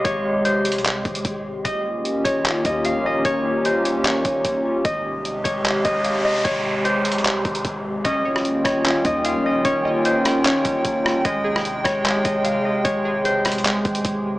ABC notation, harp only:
X:1
M:4/4
L:1/8
Q:1/4=150
K:Ab
V:1 name="Harp"
d2 c6 | e3 d2 e f e | d2 c2 d2 z2 | e3 d2 e f e |
d2 c6 | e3 d2 e f e | d2 c2 d2 z2 | e3 d2 e f e |
d2 c6 |]